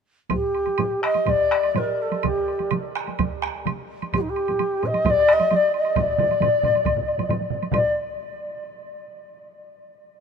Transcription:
0.30 shakuhachi G4, taiko, taiko low-mid, taiko high, high woodblock
0.55 high woodblock
0.66 taiko high, high woodblock
0.78 taiko low-mid, taiko high, high woodblock
1.03 shakuhachi D#5, taiko rim, high woodblock
1.14 taiko high, high woodblock
1.26 shakuhachi D5, taiko, taiko low-mid, taiko high, high woodblock
1.51 taiko rim, high woodblock
1.63 high woodblock
1.75 shakuhachi A#4, taiko low-mid, taiko high, high woodblock
2.02 shakuhachi A4
2.12 taiko high, high woodblock
2.23 shakuhachi G4, taiko, taiko mid, taiko high, high woodblock
2.48 high woodblock
2.59 taiko high, high woodblock
2.71 taiko mid, taiko high, high woodblock
2.95 taiko rim, high woodblock
3.07 taiko high, high woodblock
3.19 taiko, taiko mid, taiko high, high woodblock
3.42 taiko rim, high woodblock
3.66 taiko mid, taiko high, high woodblock
4.02 taiko high, high woodblock
4.13 shakuhachi G4, taiko, taiko low-mid, taiko high, high woodblock
4.21 shakuhachi D#4
4.29 shakuhachi G4
4.36 high woodblock
4.48 taiko low-mid, taiko high, high woodblock
4.59 taiko high, high woodblock
4.83 shakuhachi D#5, taiko low-mid, high woodblock
4.94 taiko high, high woodblock
5.05 taiko, taiko low-mid, taiko high, high woodblock
5.10 shakuhachi D5
5.28 taiko rim, high woodblock
5.33 shakuhachi D#5
5.40 taiko high, high woodblock
5.51 taiko high, high woodblock
5.56 shakuhachi D5
5.74 shakuhachi D#5, high woodblock
5.85 high woodblock
5.96 taiko, taiko low-mid, taiko mid, taiko high, high woodblock
6.00 shakuhachi D5
6.18 taiko low-mid, taiko mid, high woodblock
6.30 taiko high, high woodblock
6.41 taiko low-mid, taiko mid, taiko high, high woodblock
6.63 taiko low-mid, taiko mid, high woodblock
6.75 taiko high, high woodblock
6.85 taiko, taiko low-mid, taiko mid, taiko high, high woodblock
6.96 taiko low-mid, taiko mid
7.08 high woodblock
7.18 taiko low-mid, taiko mid, taiko high, high woodblock
7.29 taiko low-mid, taiko mid, taiko high, high woodblock
7.41 taiko high
7.50 taiko low-mid, taiko mid
7.62 taiko high, high woodblock
7.72 shakuhachi D5, taiko, taiko low-mid, taiko mid, taiko high, high woodblock

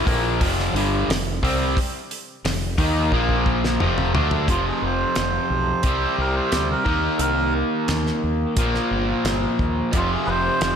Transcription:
0.06 fingered electric bass A#1, overdriven electric guitar A#2 F3 A#3, kick, open hi-hat
0.40 fingered electric bass F1, overdriven electric guitar F2 C3 F3, kick, open hi-hat
0.59 snare
0.73 fingered electric bass G1, overdriven electric guitar G2 D3 G3, open hi-hat
1.08 fingered electric bass F1, overdriven electric guitar F2 C3, snare, open hi-hat
1.42 fingered electric bass C2, overdriven electric guitar C3 G3 C4, kick, open hi-hat
1.77 kick, open hi-hat
2.11 open hi-hat
2.44 fingered electric bass F1, overdriven electric guitar F2 C3, snare, open hi-hat
2.78 fingered electric bass D#2, overdriven electric guitar D#3 A#3 D#4, kick, open hi-hat
3.12 fingered electric bass A#1, overdriven electric guitar A#2 F3 A#3, kick
3.29 kick
3.46 kick
3.65 snare
3.80 fingered electric bass F1, overdriven electric guitar F2 C3 F3, mid tom
3.98 mid tom
4.14 fingered electric bass D2, overdriven electric guitar D3 A3 D4, floor tom
4.31 floor tom
4.48 fingered electric bass F1, overdriven electric guitar F2 C3 F3, melodica F4, kick, closed hi-hat
4.68 melodica G#4
4.81 fingered electric bass F1, melodica B4
4.85 melodica C5
5.16 fingered electric bass F1, snare, closed hi-hat
5.50 fingered electric bass B1
5.83 fingered electric bass C2, overdriven electric guitar C3 G3, kick, closed hi-hat
5.88 overdriven electric guitar C4
6.18 fingered electric bass C2, melodica A#4
6.35 melodica C5
6.52 fingered electric bass D2, snare, closed hi-hat
6.71 melodica A#4
6.85 fingered electric bass D#2, overdriven electric guitar D#3 A#3 D#4, kick
7.16 fingered electric bass C2, melodica A4, closed hi-hat
7.21 melodica A#4
7.88 fingered electric bass D#2, snare, closed hi-hat
8.06 snare
8.24 fingered electric bass D#2
8.56 fingered electric bass A#1, overdriven electric guitar A#2 F3, kick, closed hi-hat
8.61 overdriven electric guitar A#3
8.75 snare
8.91 fingered electric bass G1
9.24 fingered electric bass G1, snare, closed hi-hat
9.59 fingered electric bass D#2, kick
9.92 fingered electric bass F1, overdriven electric guitar F2 C3 F3, kick, closed hi-hat
9.97 melodica F4
10.14 melodica G#4
10.26 fingered electric bass F1, melodica B4
10.30 melodica C5
10.61 fingered electric bass F1, snare, closed hi-hat

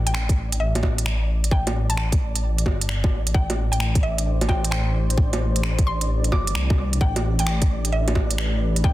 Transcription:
Already playing: detuned saw bass A1, synth texture D5
0.06 synth pluck G5, closed hi-hat
0.14 synth pluck G5, finger snap
0.29 kick, closed hi-hat
0.52 closed hi-hat
0.60 synth pluck E5
0.75 closed hi-hat, low bongo
0.83 detuned saw bass A1, kick, low bongo
0.98 closed hi-hat
1.06 finger snap
1.44 closed hi-hat
1.51 detuned saw bass A1, synth pluck G5, kick
1.67 closed hi-hat, low bongo
1.90 synth pluck A5, closed hi-hat
1.97 synth pluck A5, finger snap
2.12 kick, closed hi-hat
2.35 closed hi-hat
2.58 closed hi-hat
2.66 detuned saw bass G1, kick, low bongo
2.81 closed hi-hat
2.89 finger snap
3.04 kick, low bongo
3.11 detuned saw bass A1
3.27 closed hi-hat
3.34 detuned saw bass A1, analog synth pad E3, synth pluck G5, kick
3.50 analog synth pad A3, closed hi-hat, low bongo
3.72 synth pluck G5, closed hi-hat
3.80 synth pluck G5, finger snap
3.95 analog synth pad D4 C5, kick, closed hi-hat
4.03 synth pluck E5
4.18 closed hi-hat
4.41 closed hi-hat, low bongo
4.49 detuned saw bass A1, synth pluck G5, kick, low bongo
4.62 analog synth pad G4, closed hi-hat
4.71 synth pluck G5, finger snap
5.10 closed hi-hat
5.17 detuned saw bass A1, kick
5.33 closed hi-hat, low bongo
5.56 closed hi-hat
5.63 finger snap
5.79 kick, closed hi-hat
5.87 synth pluck C6
6.01 closed hi-hat
6.24 closed hi-hat
6.32 detuned saw bass G1, synth pluck D6, kick, low bongo
6.47 closed hi-hat
6.55 detuned saw bass C2, finger snap
6.70 kick, low bongo
6.93 closed hi-hat
7.01 detuned saw bass A1, synth pluck G5, kick
7.16 closed hi-hat, low bongo
7.39 synth pluck G5, closed hi-hat
7.47 synth pluck G5, finger snap
7.62 kick, closed hi-hat
7.85 analog synth pad B4, closed hi-hat
7.92 synth pluck E5
8.08 closed hi-hat, low bongo
8.15 detuned saw bass A1, kick, low bongo
8.31 closed hi-hat
8.38 finger snap
8.76 closed hi-hat
8.84 detuned saw bass A1, synth pluck G5, kick

